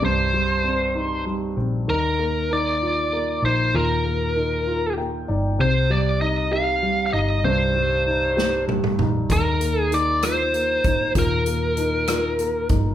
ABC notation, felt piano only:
X:1
M:6/8
L:1/8
Q:3/8=65
K:Eb
V:1 name="Felt piano"
[G,,G,CE] G, C E G, C | E, B, E F B, E | B,, B, E F [B,g] [Ed] | C, G, E G G, E |
G,, G, E G G, E | E, B, E F B, E | B,, B, E F B, E |]